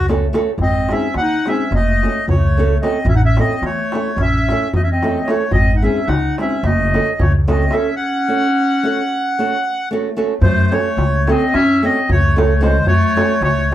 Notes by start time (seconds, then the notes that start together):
Already playing: C#2
0.08 A3 C#4 F#4 A4, darbuka tek
0.33 A3 C#4 F#4 A4, darbuka tek
0.47 darbuka tek
0.58 G#1 C4, darbuka dum
0.63 D#5
0.75 darbuka tek
0.89 G#3 C4 C#4 D#4 G#4 E5, darbuka tek
1.02 darbuka tek
1.14 D#2 F#5, darbuka tek
1.20 D#4
1.46 G#3 C4 D#4 G#4 E5, darbuka tek
1.52 C#4
1.59 darbuka tek
1.71 F#1, darbuka tek, darbuka dum
1.75 A3 D#5
1.88 darbuka tek
2.03 A3 C#4 F#4 A4, darbuka tek
2.28 C#2 C#5, darbuka dum
2.33 A3
2.44 darbuka tek
2.57 A3 C#4 F#4 A4
2.71 darbuka tek
2.82 A3 C4 C#4 F#4 A4 D#5, darbuka tek
3.05 A1 C#4 E5, darbuka dum
3.15 D#4 F#5
3.22 C#4 E5, darbuka tek
3.37 A3 C4 C#4 E4 A4 D#5, darbuka tek
3.50 darbuka tek
3.62 E2 A3 C#5, darbuka tek
3.92 A3 C#4 E4 A4, darbuka tek
4.05 darbuka tek
4.16 A1 C#4, darbuka tek, darbuka dum
4.21 E5
4.33 darbuka tek
4.48 A3 C#4 E4 A4, darbuka tek
4.73 E2 A3 D#5, darbuka dum
4.83 C#4 E5
4.88 C4 D#5, darbuka tek
5.02 A3 C#4 E4 A4, darbuka tek
5.15 darbuka tek
5.26 A3 C#4 E4 C#5, darbuka tek
5.30 A4
5.51 G#1 C4 D#5, darbuka dum
5.68 darbuka tek
5.75 D#4 F#5
5.82 G#3 C4 C#4 D#4 G#4 E5
5.96 darbuka tek
6.07 C#2 D#4 F#5, darbuka tek
6.38 G#3 C4 C#4 D#4 G#4 E5, darbuka tek
6.52 darbuka tek
6.63 F#1 A3 D#5, darbuka tek, darbuka dum
6.80 darbuka tek
6.94 A3 C#4 F#4 A4, darbuka tek
7.19 C#2 A3 C#5, darbuka dum
7.34 darbuka tek
7.48 A3 C4 C#4 F#4 A4 D#5, darbuka tek
7.59 darbuka tek
7.71 A3 C#4 F#4 A4 E5, darbuka tek
7.76 C#4
7.96 C#4 F#5
8.28 A3 C#4 F#4 A4
8.83 A3 C#4 F#4 A4
9.39 A3 C#4 F#4 A4
9.91 A3 C#4 F#4 A4
10.17 A3 C#4 F#4 A4
10.41 F#2 A3 C5, darbuka dum
10.71 A3 C#4 F#4 A4 C#5, darbuka tek
10.85 darbuka tek
10.97 C#2, darbuka tek
11.13 darbuka tek
11.27 A3 C4 C#4 F#4 A4 D#5, darbuka tek
11.54 F#2 C#4 E5, darbuka tek
11.83 A3 C4 C#4 F#4 A4 D#5
12.09 C#2 A3 C#5, darbuka dum
12.36 A3 C#4 F#4 A4, darbuka tek
12.40 C#5
12.61 G#3 A3 C#4 F#4 A4 C5, darbuka tek
12.86 F#2 A3 C#5, darbuka dum
13.16 A3 C#4 F#4 A4, darbuka tek
13.30 darbuka tek
13.41 C#2 A3 C#5, darbuka tek
13.58 darbuka tek
13.71 A3